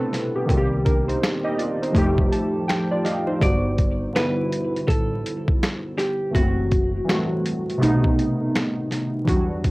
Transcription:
Already playing: B2 A3 B3 D4 E4 B4
0.00 C4 A4
0.13 snare, closed hi-hat
0.36 B3 G4
0.46 C2 D#3 A#3 C4, kick
0.50 F#4, closed hi-hat
0.57 G4
0.85 D4 A#4, kick, closed hi-hat
1.08 D#4 C5, closed hi-hat
1.23 finger snap, snare, closed hi-hat
1.44 G4 D#5
1.58 F4 D5, closed hi-hat
1.82 D#4 C5, closed hi-hat
1.92 F1 F3 A3 D#4, kick, closed hi-hat
1.98 G4
2.18 kick
2.32 A5, closed hi-hat
2.68 G5, finger snap, snare, closed hi-hat
2.91 F4 D5
3.04 G4 D#5 F5, snare, closed hi-hat
3.27 D#4 C5
3.40 G1 D3 G3 B3 D5, kick, closed hi-hat
3.45 F#4
3.78 kick, closed hi-hat
4.13 D3 G3 B3 B4, finger snap, snare, closed hi-hat
4.18 E4
4.52 closed hi-hat
4.76 closed hi-hat
4.88 A1 A4, kick, closed hi-hat
5.26 closed hi-hat
5.48 kick
5.63 finger snap, snare, closed hi-hat
5.98 G4, snare, closed hi-hat
6.31 E3 A3 C4 F#4, kick
6.35 F#1 E4, closed hi-hat
6.43 F#4
6.71 kick, closed hi-hat
7.05 E3 G3 C4
7.09 A3 F#4, finger snap, snare, closed hi-hat
7.46 closed hi-hat
7.70 closed hi-hat
7.78 C3 A3 B3
7.82 B1 D#4, closed hi-hat
8.04 kick
8.19 closed hi-hat
8.55 finger snap, snare, closed hi-hat
8.91 snare, closed hi-hat
9.24 E2 E3 F#3 D4, kick
9.29 G3 F#4, closed hi-hat
9.64 kick, closed hi-hat

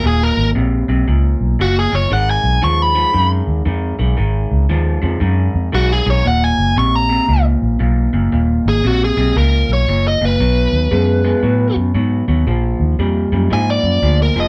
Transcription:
0.03 D#1 D#2 A#2 G#4
0.23 A#4
0.37 G#1
0.55 A#1 D#2 C3
0.88 B1 D#2 C3
1.07 C#2 D#2 A#2
1.41 B1
1.59 F#1 D#2 A#2 F#4
1.79 G#4
1.92 F#1 D#2 A#2 C#5
2.11 G#1 G#2 D#3 F#5
2.31 G#5
2.44 B1
2.62 D#2 G#2 F3 C#6
2.82 B5
2.95 G#2 F3
3.13 F#2 G#2 D#3
3.47 D#2
3.65 F2 G#2 D#3
3.99 B1 G#2 D#3
4.17 G#1 G#2 D#3
4.51 C#2
4.69 D#2 G#2 F3
5.02 F2 G#2 F3
5.20 F#2 G#2 D#3
5.54 F2
5.72 B1 G#2 D#3 F#4
5.93 G#4
6.06 B1 G#2 D#3
6.10 C#5
6.25 D#1 D#2 A#2 F#5
6.44 G#5
6.58 F#1
6.76 A#1 D#2 C3 C#6
6.96 A#5
7.09 D#2 C3
7.28 C#2 D#2 A#2
7.62 A#1
7.79 B1 D#2 A#2
8.13 F#1 D#2 A#2
8.32 D#1 D#2 A#2
8.65 G#1 G#4
8.84 A#1 D#2 C3 F#4
9.04 G#4
9.17 B1 D#2 C3
9.36 C#2 D#2 A#2 A#4
9.69 B1
9.73 C#5
9.88 F#1 D#2 A#2
10.08 D#5
10.21 F#1 D#2 A#2
10.25 B4
10.39 B1 B2 F#3
10.72 D#2
10.91 F#2 B2 G#3
11.24 B2 G#3
11.43 A2 B2 F#3
11.76 F#2
11.95 G#2 B2 F#3
12.28 D#2 B2 F#3
12.47 A#1 A#2 F3
12.80 D#2
12.99 F2 A#2 G3
13.32 F#2 A#2 G3
13.50 G#2 A#2 F3 G#5
13.70 D5
13.83 F#2
14.02 D2 A#2 F3
14.22 A#4
14.36 F1 A#2 F3
14.40 D#5

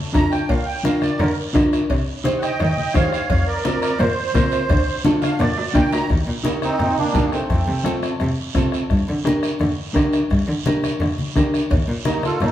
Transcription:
0.13 F2 D4 F4 A4 A#5, bombo low, bombo rim, high conga, low conga, low timbale, short guiro
0.32 G5, bombo rim, short guiro
0.49 A#2 F5, bombo low, bombo rim, cowbell, high conga, long guiro
0.66 G5
0.84 D4 F4 A#4 F5, bombo rim, high conga, short guiro
1.02 D5, bombo rim, high conga, short guiro
1.18 D3 A#4, bombo rim, cowbell, high conga, low conga, long guiro
1.54 D3 D4 F4 A#4, bombo low, bombo rim, high conga, low conga, low timbale, short guiro
1.73 bombo rim, short guiro
1.90 C3, bombo low, bombo rim, cowbell, high conga, long guiro
2.24 D#4 G4 C5, bombo rim, high conga, short guiro
2.39 D#5 F#5 G5, short guiro
2.43 bombo rim
2.60 D#3 D#5 G5, bombo rim, cowbell, high conga, low conga, long guiro
2.77 D#5 G5, high conga
2.93 D#3 D#4 G4 C5 C#5 F5, bombo low, bombo rim, high conga, low conga, low timbale, short guiro
3.12 C#5 F5, bombo rim, short guiro
3.30 F2 C#5 F5, bombo low, bombo rim, cowbell, high conga, low conga, long guiro
3.46 A#4 D5
3.64 C4 F4 A#4 D5, bombo rim, high conga, short guiro
3.81 A#4 D5, bombo rim, short guiro
3.99 A#2 C5, bombo rim, cowbell, high conga, low conga, long guiro
4.34 A#2 C4 F4 A#4, bombo low, bombo rim, high conga, short guiro
4.51 bombo rim, short guiro
4.69 D2, bombo low, bombo rim, cowbell, high conga, low conga, long guiro
5.04 D4 F4 A4, bombo rim, high conga, short guiro
5.22 F5, bombo rim, high conga, high timbale, short guiro
5.39 A#2 D5, bombo rim, cowbell, high conga, low conga, high timbale, long guiro
5.57 low timbale
5.69 F#5
5.74 A#2 D4 F4 A#4 G5, bombo low, bombo rim, high conga, short guiro
5.92 A#5, bombo rim, low timbale, short guiro
6.10 D#2, bombo low, bombo rim, high conga, long guiro
6.27 A#2
6.44 G3 A#3 D#4 G4 A#4, bombo rim, high conga, short guiro
6.62 C4 D#4, bombo rim, high conga, short guiro
6.79 A#2, bombo rim, high conga, low conga, long guiro
6.98 A#3 D4, high conga
7.14 A#2 D#4 G4 A#4, bombo low, bombo rim, high conga, low conga, short guiro
7.32 A3 C4, bombo rim, short guiro
7.50 F2, bombo low, bombo rim, high conga, low conga, long guiro
7.67 C3
7.84 C4 F4 A4, bombo rim, high conga, short guiro
8.03 bombo rim, short guiro
8.20 C3, bombo rim, high conga, low conga, long guiro
8.55 C3 C4 F4 A4, bombo low, bombo rim, high conga, low conga, short guiro
8.72 bombo rim, short guiro
8.90 G2, bombo low, bombo rim, high conga, low conga, long guiro
9.08 D3
9.25 D4 G4 A#4, bombo rim, high conga, short guiro
9.43 bombo rim, short guiro
9.60 D3, bombo rim, high conga, low conga, long guiro
9.94 D3 D4 G4 A#4, bombo low, bombo rim, high conga, short guiro
10.13 bombo rim, short guiro
10.31 G2, bombo low, bombo rim, high conga, low conga, long guiro
10.48 D3
10.66 D4 G4 A#4, bombo rim, high conga, short guiro
10.83 bombo rim, high conga, short guiro
11.00 D3, bombo rim, high conga, low conga, long guiro
11.18 high conga
11.36 D3 D4 G4 A#4, bombo low, bombo rim, high conga, short guiro
11.54 bombo rim, short guiro
11.71 D#2, bombo low, bombo rim, cowbell, high conga, low conga, long guiro
11.88 A#2
12.05 A#3 D#4 G4 A#4, bombo rim, high conga, short guiro
12.23 F4 A4, bombo rim, high conga, short guiro
12.40 A#2 D#4 A4, bombo rim, cowbell, high conga, low conga, long guiro

